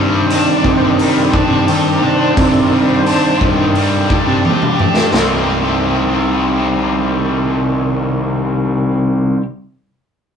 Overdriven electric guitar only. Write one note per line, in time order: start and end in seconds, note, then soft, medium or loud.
0.00 1.36 C3 medium
0.00 0.99 G3 soft
0.00 0.31 D4 medium
0.00 1.67 G4 medium
0.32 1.33 D4 medium
0.65 2.38 D#3 medium
0.99 2.71 G3 medium
1.33 2.02 D4 medium
1.67 3.41 G4 medium
2.03 3.05 D4 medium
2.37 4.10 C3 medium
2.72 3.75 G3 soft
3.07 4.10 D4 medium
3.42 5.13 D#3 medium
3.76 5.14 G3 medium
4.11 4.80 D4 medium
4.45 5.14 G4 medium
4.81 5.15 D4 medium
5.12 9.40 C3 medium
5.12 9.41 D#3 medium
5.12 9.42 G3 medium
5.12 9.42 C4 medium
5.17 9.43 G4 medium